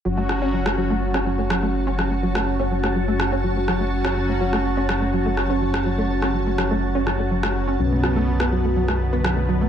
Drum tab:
SD |--r--r---r--r---|r--r---r--r---r-|-r---r--r---r--r|---r--r---r--r--|

SD |--r--r---r--r---|